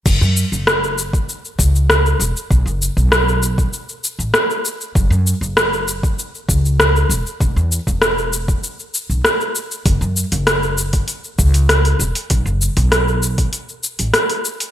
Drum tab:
CC |x---------------|----------------|----------------|----------------|
HH |----------------|----------------|----------------|----------------|
SH |xxxxxxxxxxxxxxxx|xxxxxxxxxxxxxxxx|xxxxxxxxxxxxxxxx|xxxxxxxxxxxxxxxx|
SD |----r-------r---|----r-------r---|----r-------r---|----r-------r---|
BD |o------o--o-----|o--o---o--------|o------o--o-----|o--o---o--------|

CC |----------------|----------------|
HH |o--oo--oo--ooo-o|o--oo--oo--ooo-o|
SH |xxxxxxxxxxxxxxxx|xxxxxxxxxxxxxxxx|
SD |----r-------r---|----r-------r---|
BD |o------o--o-----|o--o---o--------|